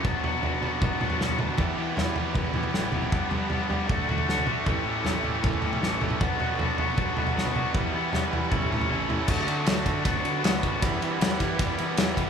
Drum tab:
CC |----------------|----------------|----------------|----------------|
RD |----------------|----------------|----------------|----------------|
SD |------------o---|----o-------o---|------------o---|----o-------o---|
T1 |----------------|----------------|----------------|----------------|
T2 |--------o-o---o-|--------o-o---oo|--------o-o---o-|--------o-o---oo|
FT |o-o-o-o-o-oo-oo-|o---o-o-oooo--o-|o-o-o-o-o-oo-oo-|o---o-o-oooo--o-|
BD |o-------o-------|o-------o-------|o-------o-------|o-------o-------|

CC |----------------|----------------|x---------------|----------------|
RD |----------------|----------------|--x-x-x-x-x-x-x-|x-x-x-x-x-x-x-x-|
SD |------------o---|----o-----------|----o-------o---|----o-------o---|
T1 |----------------|------------o---|----------------|----------------|
T2 |--------o-o---o-|--------o-o-----|----------------|----------------|
FT |o-o-o-o-o-oo-oo-|o---o-o-oooo--o-|----------------|----------------|
BD |o-------o-------|o-------o-------|o-----o-o-----o-|o-----o-o-----o-|